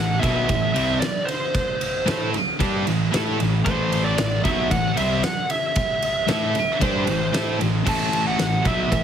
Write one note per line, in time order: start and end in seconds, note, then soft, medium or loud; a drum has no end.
0.00 0.22 A1 medium
0.00 0.17 A2 medium
0.00 0.17 E3 medium
0.00 0.19 F#5 loud
0.19 0.47 B2 loud
0.19 0.47 F#3 loud
0.19 0.48 B3 loud
0.19 0.99 E5 medium
0.19 kick loud
0.24 0.48 B1 loud
0.24 ride medium
0.48 0.74 A1 medium
0.48 0.70 A2 medium
0.48 0.70 E3 medium
0.48 kick loud
0.48 ride loud
0.74 1.00 C2 loud
0.74 1.00 C3 loud
0.74 1.00 G3 medium
0.74 1.01 C4 loud
0.74 ride medium
1.00 1.28 D5 loud
1.00 snare loud
1.00 ride loud
1.25 2.28 C5 medium
1.25 ride medium
1.54 kick loud
1.54 ride loud
1.81 ride medium
2.06 2.33 A2 loud
2.06 2.32 A3 medium
2.06 2.33 E4 medium
2.06 2.33 A4 loud
2.06 snare loud
2.06 ride loud
2.33 muted distorted electric guitar stroke medium
2.33 muted picked electric bass stroke soft
2.33 ride medium
2.59 2.85 G2 loud
2.59 2.85 G3 loud
2.59 2.86 D4 loud
2.59 2.86 G4 loud
2.59 kick loud
2.59 ride loud
2.85 3.12 A1 medium
2.85 3.07 A2 medium
2.85 3.07 E3 medium
2.85 ride medium
3.11 3.38 A2 medium
3.11 3.37 A3 medium
3.11 3.38 E4 loud
3.11 3.38 A4 loud
3.11 snare loud
3.11 ride loud
3.37 3.65 A1 medium
3.37 3.60 A2 medium
3.37 3.59 E3 medium
3.37 ride medium
3.64 4.15 A1 medium
3.64 4.16 A2 loud
3.64 4.16 E3 loud
3.64 4.17 A3 loud
3.64 4.06 C5 medium
3.64 kick loud
3.64 ride loud
3.92 ride medium
4.04 4.43 D5 loud
4.17 4.43 A1 medium
4.17 4.38 A2 medium
4.17 4.38 E3 medium
4.17 snare loud
4.17 ride loud
4.44 4.69 B1 loud
4.44 4.68 B2 loud
4.44 4.68 F#3 loud
4.44 4.70 B3 loud
4.44 4.69 E5 loud
4.44 kick loud
4.44 ride medium
4.68 4.96 A1 medium
4.68 4.91 A2 medium
4.68 4.91 E3 medium
4.68 4.95 F#5 loud
4.68 kick loud
4.68 ride loud
4.96 5.22 C2 loud
4.96 5.22 C3 medium
4.96 5.23 G3 medium
4.96 5.22 C4 loud
4.96 5.24 E5 loud
4.96 ride medium
5.23 5.50 F#5 loud
5.23 snare loud
5.23 ride loud
5.50 6.29 E5 loud
5.50 ride medium
5.76 kick loud
5.76 ride loud
6.02 ride medium
6.27 6.54 A2 medium
6.27 6.53 A3 medium
6.27 6.54 E4 loud
6.27 6.54 A4 loud
6.27 6.78 E5 medium
6.27 snare loud
6.27 ride loud
6.53 muted distorted electric guitar stroke medium
6.53 muted picked electric bass stroke soft
6.53 ride medium
6.79 7.06 G2 medium
6.79 7.06 G3 medium
6.79 7.06 D4 loud
6.79 7.06 G4 loud
6.79 7.57 C5 medium
6.79 kick loud
6.79 ride loud
7.05 7.31 A1 medium
7.05 7.27 A2 medium
7.05 7.28 E3 medium
7.05 ride medium
7.32 7.59 A2 medium
7.32 7.58 A3 medium
7.32 7.58 E4 loud
7.32 7.59 A4 loud
7.32 snare loud
7.32 ride loud
7.58 7.85 A1 medium
7.58 7.80 A2 medium
7.58 7.80 E3 medium
7.58 ride medium
7.84 8.35 A1 medium
7.84 8.36 A2 medium
7.84 8.36 E3 loud
7.84 8.37 A3 loud
7.84 kick loud
7.84 crash loud
7.88 8.27 A5 loud
8.13 ride medium
8.27 8.67 F#5 medium
8.37 8.64 A1 medium
8.37 8.59 A2 medium
8.37 8.59 E3 medium
8.37 snare loud
8.37 ride medium
8.63 8.90 B1 loud
8.63 8.88 B2 loud
8.63 8.88 F#3 loud
8.63 8.90 B3 loud
8.63 9.04 E5 medium
8.63 kick loud
8.63 ride medium
8.88 9.04 A1 medium
8.88 9.04 A2 medium
8.88 9.04 E3 medium
8.88 kick loud
8.88 ride loud